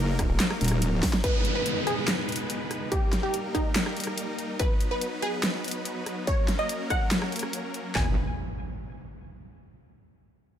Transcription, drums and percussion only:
0.19 kick medium
0.19 cross-stick medium
0.19 closed hi-hat medium
0.40 snare loud
0.40 clap loud
0.40 closed hi-hat medium
0.51 cross-stick medium
0.61 closed hi-hat medium
0.64 closed hi-hat medium
0.68 cross-stick medium
0.68 closed hi-hat medium
0.82 closed hi-hat medium
1.03 kick medium
1.03 snare medium
1.03 open hi-hat medium
1.13 snare medium
1.24 kick loud
1.24 closed hi-hat medium
1.45 closed hi-hat medium
1.66 closed hi-hat medium
1.87 cross-stick soft
1.87 closed hi-hat medium
2.08 snare loud
2.08 clap medium
2.08 closed hi-hat medium
2.29 closed hi-hat soft
2.32 closed hi-hat medium
2.36 closed hi-hat medium
2.50 closed hi-hat medium
2.71 cross-stick soft
2.71 closed hi-hat medium
2.92 kick loud
2.92 closed hi-hat medium
3.13 snare medium
3.13 closed hi-hat medium
3.34 closed hi-hat medium
3.55 kick medium
3.55 cross-stick soft
3.55 closed hi-hat medium
3.76 snare loud
3.76 clap loud
3.76 closed hi-hat medium
3.86 cross-stick medium
3.97 closed hi-hat soft
4.00 closed hi-hat medium
4.04 cross-stick medium
4.04 closed hi-hat medium
4.18 closed hi-hat medium
4.39 closed hi-hat soft
4.59 kick loud
4.59 closed hi-hat medium
4.81 closed hi-hat medium
5.01 closed hi-hat medium
5.22 cross-stick soft
5.22 closed hi-hat soft
5.43 snare loud
5.43 clap medium
5.43 closed hi-hat medium
5.64 closed hi-hat soft
5.68 closed hi-hat medium
5.71 closed hi-hat medium
5.85 closed hi-hat medium
6.06 cross-stick soft
6.06 closed hi-hat soft
6.27 kick loud
6.27 closed hi-hat medium
6.48 snare medium
6.48 closed hi-hat medium
6.69 closed hi-hat medium
6.90 kick medium
6.90 cross-stick medium
6.90 closed hi-hat soft
7.11 snare loud
7.11 clap medium
7.11 closed hi-hat medium
7.22 cross-stick medium
7.32 closed hi-hat soft
7.36 closed hi-hat medium
7.39 cross-stick medium
7.39 closed hi-hat medium
7.53 closed hi-hat medium
7.74 closed hi-hat soft
7.95 kick loud
7.95 clap medium

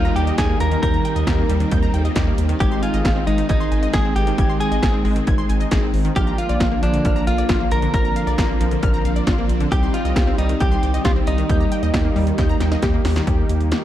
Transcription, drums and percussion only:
0.16 closed hi-hat medium
0.27 closed hi-hat medium
0.38 kick loud
0.38 snare loud
0.38 closed hi-hat medium
0.60 closed hi-hat medium
0.71 closed hi-hat medium
0.83 kick loud
0.83 closed hi-hat medium
1.05 closed hi-hat medium
1.16 closed hi-hat soft
1.27 kick loud
1.27 snare loud
1.27 closed hi-hat medium
1.50 closed hi-hat medium
1.60 closed hi-hat medium
1.71 kick loud
1.71 closed hi-hat medium
1.94 closed hi-hat medium
2.05 closed hi-hat medium
2.16 kick loud
2.16 snare loud
2.16 closed hi-hat medium
2.38 closed hi-hat medium
2.49 closed hi-hat medium
2.60 kick loud
2.60 closed hi-hat medium
2.83 closed hi-hat medium
2.94 closed hi-hat soft
3.05 kick loud
3.05 snare loud
3.05 closed hi-hat medium
3.27 closed hi-hat medium
3.38 closed hi-hat medium
3.49 kick loud
3.49 closed hi-hat medium
3.72 closed hi-hat medium
3.83 closed hi-hat medium
3.93 kick loud
3.93 snare loud
3.93 closed hi-hat medium
4.16 closed hi-hat medium
4.27 closed hi-hat medium
4.38 kick loud
4.38 closed hi-hat medium
4.61 closed hi-hat medium
4.72 closed hi-hat soft
4.83 kick loud
4.83 snare loud
4.83 closed hi-hat medium
5.05 open hi-hat medium
5.16 closed hi-hat medium
5.27 kick loud
5.27 closed hi-hat medium
5.50 closed hi-hat medium
5.61 closed hi-hat medium
5.71 kick loud
5.71 snare loud
5.71 closed hi-hat medium
5.94 open hi-hat medium
6.05 closed hi-hat medium
6.16 kick loud
6.16 closed hi-hat medium
6.38 closed hi-hat medium
6.49 closed hi-hat soft
6.60 kick loud
6.60 snare loud
6.60 closed hi-hat medium
6.83 closed hi-hat medium
6.94 closed hi-hat medium
7.05 kick loud
7.05 closed hi-hat medium
7.27 closed hi-hat medium
7.38 closed hi-hat medium
7.49 kick loud
7.49 snare loud
7.49 closed hi-hat medium
7.71 closed hi-hat medium
7.82 closed hi-hat medium
7.94 kick loud
7.94 closed hi-hat medium
8.16 closed hi-hat medium
8.27 closed hi-hat medium
8.38 kick loud
8.38 snare loud
8.38 closed hi-hat medium
8.61 closed hi-hat medium
8.71 closed hi-hat medium
8.83 kick loud
8.83 closed hi-hat medium
9.05 closed hi-hat medium
9.16 closed hi-hat medium
9.27 kick loud
9.27 snare loud
9.27 closed hi-hat medium
9.49 closed hi-hat medium
9.60 closed hi-hat medium
9.72 kick loud
9.72 closed hi-hat medium
9.94 closed hi-hat medium
10.05 closed hi-hat soft
10.16 kick loud
10.16 snare loud
10.16 closed hi-hat medium
10.38 closed hi-hat medium
10.49 closed hi-hat medium
10.60 kick loud
10.60 closed hi-hat medium
10.83 closed hi-hat medium
10.94 closed hi-hat medium
11.05 kick loud
11.05 snare loud
11.05 closed hi-hat medium
11.27 closed hi-hat medium
11.38 closed hi-hat medium
11.49 kick loud
11.49 closed hi-hat medium
11.72 closed hi-hat medium
11.83 closed hi-hat soft
11.94 kick loud
11.94 snare loud
11.94 closed hi-hat medium
12.16 open hi-hat medium
12.27 closed hi-hat medium
12.38 kick loud
12.38 snare medium
12.38 closed hi-hat medium
12.60 snare medium
12.60 closed hi-hat medium
12.72 snare medium
12.72 closed hi-hat medium
12.82 kick loud
12.82 snare medium
12.82 closed hi-hat medium
13.05 snare loud
13.05 open hi-hat medium
13.16 snare loud
13.16 closed hi-hat medium
13.27 kick loud
13.27 closed hi-hat medium
13.49 closed hi-hat medium
13.61 closed hi-hat soft
13.72 snare loud
13.72 closed hi-hat medium

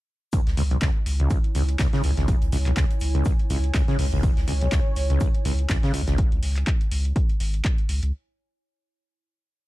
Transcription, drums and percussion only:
0.33 kick loud
0.33 closed hi-hat medium
0.33 shaker medium
0.47 snare soft
0.47 closed hi-hat soft
0.57 open hi-hat loud
0.57 shaker medium
0.71 closed hi-hat soft
0.81 kick loud
0.81 snare loud
0.81 clap loud
0.81 closed hi-hat medium
0.81 shaker medium
1.06 open hi-hat loud
1.06 shaker medium
1.20 closed hi-hat soft
1.30 kick loud
1.30 closed hi-hat medium
1.30 shaker medium
1.44 closed hi-hat soft
1.55 open hi-hat loud
1.55 shaker medium
1.69 closed hi-hat medium
1.79 kick loud
1.79 snare loud
1.79 clap loud
1.79 closed hi-hat medium
1.79 shaker medium
1.93 snare medium
1.93 closed hi-hat soft
2.03 open hi-hat medium
2.03 shaker medium
2.17 snare soft
2.17 closed hi-hat medium
2.28 kick loud
2.28 closed hi-hat medium
2.28 shaker medium
2.42 closed hi-hat soft
2.52 open hi-hat loud
2.52 shaker medium
2.66 clap soft
2.66 closed hi-hat soft
2.76 kick loud
2.76 snare loud
2.76 clap loud
2.76 closed hi-hat medium
2.76 shaker medium
2.90 closed hi-hat soft
3.00 open hi-hat loud
3.00 shaker medium
3.15 closed hi-hat soft
3.25 kick loud
3.25 closed hi-hat medium
3.25 shaker medium
3.39 closed hi-hat soft
3.50 open hi-hat loud
3.50 shaker medium
3.64 closed hi-hat medium
3.74 kick loud
3.74 snare loud
3.74 clap loud
3.74 closed hi-hat medium
3.74 shaker medium
3.88 snare soft
3.88 closed hi-hat soft
3.99 open hi-hat loud
3.99 open hi-hat medium
4.12 closed hi-hat soft
4.23 kick loud
4.23 closed hi-hat medium
4.23 shaker medium
4.37 snare soft
4.37 closed hi-hat soft
4.47 open hi-hat loud
4.47 shaker medium
4.61 closed hi-hat soft
4.71 kick loud
4.71 snare loud
4.71 clap loud
4.71 closed hi-hat medium
4.71 shaker medium
4.96 open hi-hat loud
4.96 shaker medium
5.10 closed hi-hat soft
5.20 kick loud
5.20 closed hi-hat medium
5.20 shaker medium
5.34 closed hi-hat soft
5.45 open hi-hat loud
5.45 shaker medium
5.59 closed hi-hat medium
5.69 kick loud
5.69 snare loud
5.69 clap loud
5.69 closed hi-hat medium
5.69 shaker medium
5.83 snare medium
5.83 closed hi-hat soft
5.94 open hi-hat loud
5.94 shaker medium
6.07 snare soft
6.07 closed hi-hat soft
6.18 kick loud
6.18 closed hi-hat medium
6.32 closed hi-hat soft
6.43 open hi-hat loud
6.56 clap soft
6.56 closed hi-hat medium
6.67 kick loud
6.67 clap loud
6.67 closed hi-hat medium
6.81 closed hi-hat soft
6.91 open hi-hat loud
7.05 closed hi-hat soft
7.16 kick loud
7.16 closed hi-hat medium
7.29 closed hi-hat soft
7.40 open hi-hat loud
7.54 closed hi-hat medium
7.65 kick loud
7.65 clap loud
7.65 closed hi-hat medium
7.78 closed hi-hat soft
7.89 open hi-hat loud
8.03 closed hi-hat soft

